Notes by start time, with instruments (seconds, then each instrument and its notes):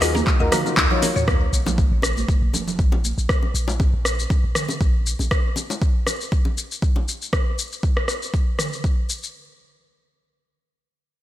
Already playing: 808-style bass D#2, analog synth pad D#3 F#3 A#3 F5
0.01 synth stab D#4 F4 F#4 G#4, synth pluck D#5, cross-stick, open hi-hat, shaker
0.15 synth pluck A#3, low bongo, high conga, shaker
0.27 kick, clap, shaker
0.40 808-style bass D#2, synth stab D#4 F4 F#4 A#4, synth pluck D#5
0.52 synth stab D#4 F4 F#4 A#4, synth pluck F#4, cross-stick, open hi-hat, mid tom, high conga, low conga, shaker
0.65 synth stab D#4 F4 F#4 A#4, low bongo, shaker
0.77 808-style bass D#2, synth pluck D#4, kick, clap, high tom, shaker
0.91 synth stab D#4 F4 F#4 C#5, high tom, low conga
1.02 synth pluck A#4, open hi-hat, low bongo, high conga, shaker
1.16 808-style bass D#2, synth pluck C#5, mid tom, shaker
1.28 kick, cross-stick, sub drop, high conga, shaker
1.53 808-style bass A#1, shaker
1.66 high bongo, low bongo, high conga, low conga, shaker
1.78 kick, shaker
1.92 808-style bass A#1
2.02 cross-stick, low bongo, shaker
2.17 high conga, shaker
2.29 kick, shaker
2.42 808-style bass A#1
2.53 low bongo, high conga, low conga, shaker
2.68 low conga, shaker
2.79 808-style bass A#1, kick, shaker
2.92 high bongo, low bongo
3.04 high conga, shaker
3.18 808-style bass A#1, shaker
3.29 kick, cross-stick, shaker
3.43 low bongo
3.54 808-style bass A#1, shaker
3.68 high bongo, shaker
3.80 kick, low bongo, shaker
3.94 808-style bass A#1
4.05 cross-stick, shaker
4.19 shaker
4.30 kick, low bongo, shaker
4.44 808-style bass A#1
4.55 cross-stick, mid tom, shaker
4.69 low bongo, shaker
4.81 808-style bass A#1, kick, shaker
5.06 shaker
5.19 808-style bass A#1, low bongo, shaker
5.31 kick, cross-stick, shaker
5.56 low bongo, shaker
5.70 high bongo, shaker
5.82 kick, shaker
6.07 cross-stick, low bongo, shaker
6.21 shaker
6.32 kick, shaker
6.45 low bongo
6.58 shaker
6.72 shaker
6.82 kick, shaker
6.96 high bongo, low bongo
7.08 shaker
7.22 shaker
7.33 kick, cross-stick, shaker
7.59 shaker
7.72 shaker
7.83 kick, shaker
7.97 cross-stick
8.08 cross-stick, shaker
8.23 shaker
8.34 kick, shaker
8.59 cross-stick, mid tom, shaker
8.73 shaker
8.84 kick, shaker
9.09 shaker
9.23 shaker